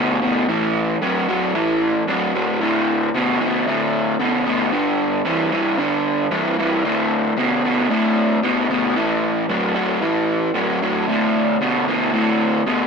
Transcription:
0.00 0.18 D2 medium
0.00 0.18 B2 medium
0.22 0.45 D2 medium
0.22 0.45 B2 medium
0.49 0.96 A2 medium
0.49 0.96 E3 medium
1.02 1.25 A2 medium
1.02 1.25 F#3 medium
1.28 1.52 A2 medium
1.28 1.52 F#3 medium
1.55 2.02 A2 medium
1.55 2.02 E3 loud
2.08 2.31 A2 medium
2.08 2.32 F#3 medium
2.35 2.58 A2 medium
2.35 2.59 F#3 medium
2.61 3.08 D2 medium
2.61 3.09 A2 medium
3.14 3.38 D2 medium
3.14 3.38 B2 medium
3.41 3.64 D2 medium
3.41 3.64 B2 medium
3.67 4.14 D2 medium
3.67 4.15 A2 medium
4.19 4.43 D2 medium
4.19 4.44 B2 loud
4.46 4.70 D2 medium
4.46 4.70 B2 medium
4.72 5.20 G2 medium
4.72 5.21 D3 medium
5.26 5.50 G2 medium
5.26 5.50 E3 medium
5.52 5.76 G2 medium
5.52 5.77 E3 medium
5.78 6.26 G2 medium
5.78 6.27 D3 medium
6.31 6.55 G2 medium
6.31 6.56 E3 medium
6.59 6.83 G2 medium
6.59 6.83 E3 medium
6.85 7.32 D2 medium
6.85 7.33 A2 medium
7.37 7.61 D2 medium
7.37 7.61 B2 medium
7.64 7.88 D2 medium
7.64 7.88 B2 medium
7.90 8.38 D2 medium
7.90 8.38 A2 medium
8.43 8.67 D2 medium
8.43 8.67 B2 loud
8.70 8.94 D2 medium
8.70 8.94 B2 medium
8.96 9.44 A2 medium
8.96 9.44 E3 medium
9.49 9.73 A2 medium
9.49 9.73 F#3 medium
9.75 9.99 A2 medium
9.75 10.00 F#3 medium
10.02 10.50 A2 medium
10.02 10.50 E3 loud
10.55 10.79 A2 medium
10.55 10.79 F#3 medium
10.83 11.06 A2 medium
10.83 11.06 F#3 medium
11.08 11.56 D2 medium
11.08 11.56 A2 medium
11.61 11.85 D2 medium
11.61 11.85 B2 medium
11.88 12.11 D2 medium
11.88 12.11 B2 medium
12.13 12.61 D2 medium
12.13 12.61 A2 loud
12.66 12.87 D2 medium
12.66 12.87 B2 loud

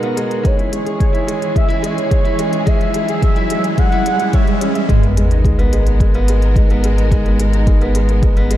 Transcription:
0.00 0.41 B2 medium
0.00 0.17 G#3 loud
0.00 0.03 B3 loud
0.00 0.17 B3 medium
0.00 0.31 D#4 medium
0.00 0.43 F#4 medium
0.00 0.48 A#4 loud
0.00 0.41 A#5 medium
0.00 closed hi-hat soft
0.00 riser medium
0.17 0.30 G#3 loud
0.17 closed hi-hat medium
0.31 0.39 D#4 medium
0.31 closed hi-hat soft
0.43 4.85 E3 medium
0.43 0.57 G#3 loud
0.43 4.85 C#4 medium
0.43 4.86 G#4 medium
0.43 1.57 C#5 loud
0.43 kick loud
0.43 closed hi-hat soft
0.58 0.72 E4 medium
0.58 closed hi-hat soft
0.72 0.80 G#3 medium
0.72 closed hi-hat medium
0.85 0.99 G#4 medium
0.85 closed hi-hat soft
0.99 1.13 G#3 medium
0.99 kick loud
0.99 closed hi-hat soft
1.13 1.27 E4 medium
1.13 closed hi-hat soft
1.27 1.41 G#3 medium
1.27 closed hi-hat medium
1.41 1.55 E4 medium
1.41 closed hi-hat soft
1.55 1.69 G#3 medium
1.55 1.87 E5 loud
1.55 kick loud
1.55 closed hi-hat soft
1.68 1.77 E4 loud
1.68 closed hi-hat soft
1.82 1.96 G#3 loud
1.82 2.69 C#5 loud
1.82 closed hi-hat medium
1.96 2.10 G#4 medium
1.96 closed hi-hat soft
2.10 2.24 G#3 medium
2.10 kick loud
2.10 closed hi-hat soft
2.25 2.38 E4 loud
2.25 closed hi-hat soft
2.39 2.52 G#3 loud
2.39 closed hi-hat medium
2.53 2.61 G#4 medium
2.53 closed hi-hat soft
2.66 2.80 G#3 loud
2.66 3.80 E5 loud
2.66 kick loud
2.66 closed hi-hat soft
2.80 2.94 E4 medium
2.80 closed hi-hat soft
2.94 3.03 G#3 medium
2.94 closed hi-hat medium
3.09 3.22 G#4 medium
3.09 closed hi-hat soft
3.22 3.36 G#3 medium
3.22 kick loud
3.22 closed hi-hat soft
3.36 3.50 E4 loud
3.36 closed hi-hat soft
3.50 3.64 G#3 medium
3.50 closed hi-hat medium
3.64 3.78 E4 medium
3.64 closed hi-hat soft
3.78 3.92 G#3 medium
3.78 4.36 F#5 loud
3.78 kick loud
3.78 closed hi-hat soft
3.92 4.00 E4 loud
3.92 closed hi-hat soft
4.06 4.20 G#3 medium
4.06 closed hi-hat medium
4.20 4.33 E4 medium
4.20 closed hi-hat soft
4.33 4.47 C#5 medium
4.33 4.62 E5 loud
4.33 kick loud
4.33 closed hi-hat soft
4.47 4.61 G#3 medium
4.47 closed hi-hat soft
4.61 4.74 C#4 medium
4.61 closed hi-hat medium
4.75 4.88 E5 medium
4.75 closed hi-hat soft
4.88 8.57 G#1 medium
4.88 8.57 G#3 medium
4.88 5.02 G#3 loud
4.88 8.57 B3 medium
4.88 8.57 A#4 medium
4.88 kick loud
4.88 closed hi-hat soft
4.88 sub drop medium
5.02 5.16 B3 medium
5.02 closed hi-hat soft
5.17 5.25 G#3 medium
5.17 closed hi-hat medium
5.31 5.44 D#4 medium
5.31 closed hi-hat soft
5.45 5.58 G#3 medium
5.45 kick loud
5.45 closed hi-hat soft
5.59 5.72 B3 loud
5.59 closed hi-hat soft
5.73 5.86 G#3 medium
5.73 closed hi-hat medium
5.87 6.00 B3 medium
5.87 closed hi-hat soft
6.00 6.14 G#3 medium
6.00 kick loud
6.00 closed hi-hat soft
6.14 6.23 B3 loud
6.14 closed hi-hat soft
6.28 6.42 G#3 loud
6.28 closed hi-hat medium
6.42 6.56 D#4 medium
6.42 closed hi-hat soft
6.56 6.70 G#3 medium
6.56 kick loud
6.56 closed hi-hat soft
6.70 6.84 B3 loud
6.70 closed hi-hat soft
6.84 6.97 G#3 loud
6.84 closed hi-hat medium
6.98 7.06 D#4 medium
6.98 closed hi-hat soft
7.11 7.25 G#3 loud
7.11 kick loud
7.11 closed hi-hat soft
7.26 7.39 B3 medium
7.26 closed hi-hat soft
7.39 7.47 G#3 medium
7.39 closed hi-hat medium
7.53 7.67 D#4 medium
7.53 closed hi-hat soft
7.67 7.81 G#3 medium
7.67 kick loud
7.67 closed hi-hat soft
7.81 7.95 B3 loud
7.81 closed hi-hat soft
7.95 8.08 G#3 medium
7.95 closed hi-hat medium
8.09 8.22 B3 medium
8.09 closed hi-hat soft
8.23 8.36 G#3 medium
8.23 kick loud
8.23 closed hi-hat soft
8.37 8.45 B3 loud
8.37 closed hi-hat soft
8.50 8.57 G#3 loud
8.50 closed hi-hat medium

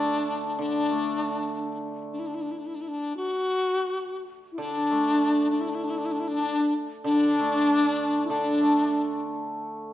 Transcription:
0.00 0.57 D3 medium
0.00 0.89 A3 soft
0.00 0.60 D4 loud
0.59 2.42 D3 medium
0.59 1.78 D4 medium
0.91 2.13 A3 soft
2.13 2.21 D4 medium
2.19 2.28 E4 medium
2.27 2.36 D4 medium
2.35 2.43 E4 medium
2.42 2.53 D4 medium
2.51 2.60 E4 medium
2.59 2.68 D4 medium
2.66 2.77 E4 medium
2.75 2.83 D4 medium
2.81 2.90 E4 medium
2.88 3.16 D4 medium
3.17 4.24 F#4 medium
4.52 4.61 E4 medium
4.58 6.45 D3 medium
4.58 5.54 D4 medium
4.58 5.50 D4 loud
4.90 6.15 A3 soft
5.51 5.62 D4 medium
5.61 5.71 E4 medium
5.69 5.76 D4 medium
5.75 5.86 E4 medium
5.84 5.92 D4 medium
5.90 6.00 E4 medium
5.98 6.07 D4 medium
6.05 6.14 E4 medium
6.12 6.21 D4 medium
6.20 6.30 E4 medium
6.28 6.74 D4 medium
6.33 6.73 D4 medium
7.04 8.29 D3 medium
7.04 8.25 D4 loud
7.04 8.19 D4 medium
7.39 8.60 A3 soft
8.24 8.32 E4 medium
8.30 9.93 D3 medium
8.30 9.21 D4 medium
8.30 9.25 D4 medium
8.61 9.89 A3 soft

